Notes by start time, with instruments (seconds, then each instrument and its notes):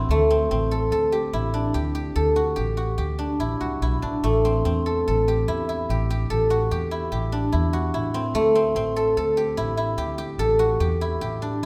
Already playing: guzheng C4 D4 E4 F#4 A4
0.09 upright bass D2, guzheng A3
0.30 guzheng C4
0.51 upright bass A1, guzheng C4
0.71 guzheng A4
0.91 upright bass D2, guzheng A4
1.12 guzheng G4
1.33 upright bass A1, guzheng E4
1.54 guzheng D4
1.74 upright bass D2, guzheng G4
1.95 guzheng G4
2.16 upright bass D2, guzheng A4
2.36 guzheng F#4
2.56 upright bass A1, guzheng G4
2.77 guzheng F#4
2.98 upright bass D2, guzheng G4
3.19 guzheng D4
3.40 upright bass A1, guzheng E4
3.61 upright bass C2, guzheng F#4
3.82 upright bass B1, guzheng E4
4.02 upright bass A1, guzheng D4
4.24 upright bass A1, guzheng A3
4.45 guzheng C4
4.65 upright bass E2, guzheng C4
4.86 guzheng A4
5.08 upright bass A1, guzheng A4
5.28 guzheng G4
5.48 upright bass E2, guzheng E4
5.69 guzheng E4
5.89 upright bass A1, guzheng G4
6.10 guzheng G4
6.30 upright bass A1, guzheng A4
6.50 guzheng F#4
6.71 upright bass E2, guzheng G4
6.91 guzheng E4
7.12 upright bass A1, guzheng G4
7.32 guzheng D4
7.52 upright bass E2, guzheng E4
7.73 guzheng F#4
7.94 upright bass A1, guzheng E4
8.14 guzheng C4
8.34 upright bass D2, guzheng A3
8.55 guzheng C4
8.75 upright bass A1, guzheng C4
8.96 guzheng A4
9.17 upright bass D2, guzheng A4
9.37 guzheng G4
9.57 upright bass A1, guzheng E4
9.77 guzheng E4
9.97 upright bass D2, guzheng G4
10.18 guzheng G4
10.38 upright bass A1, guzheng A4
10.59 guzheng F#4
10.80 upright bass E2, guzheng G4
11.01 guzheng E4
11.21 upright bass A1, guzheng G4
11.42 guzheng D4